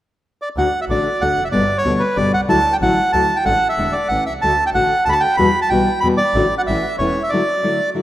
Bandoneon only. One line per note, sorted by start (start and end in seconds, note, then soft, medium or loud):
0.42 0.49 D5 soft
0.58 0.80 F#5 medium
0.81 0.85 E5 medium
0.90 1.23 D5 medium
1.21 1.44 F#5 medium
1.44 1.48 E5 soft
1.52 1.77 D5 medium
1.78 2.02 C#5 medium
1.99 2.17 B4 soft
2.17 2.32 D5 medium
2.34 2.41 F#5 medium
2.49 2.74 A5 medium
2.73 2.77 G5 medium
2.82 3.12 F#5 medium
3.12 3.38 A5 medium
3.36 3.44 G5 medium
3.46 3.68 F#5 medium
3.69 3.94 E5 medium
3.92 4.08 D5 soft
4.08 4.24 F#5 medium
4.26 4.33 E5 medium
4.42 4.64 A5 medium
4.66 4.70 G5 medium
4.74 5.04 F#5 medium
5.05 5.10 A5 medium
5.09 5.22 A5 medium
5.09 5.14 B5 medium
5.20 5.36 G5 medium
5.37 5.60 B5 medium
5.62 5.70 A5 medium
5.69 6.00 G5 medium
6.00 6.08 B5 medium
6.17 6.55 D5 medium
6.58 6.62 F#5 medium
6.67 6.96 E5 medium
6.98 7.23 C#5 medium
7.23 7.31 E5 medium
7.30 7.90 D5 medium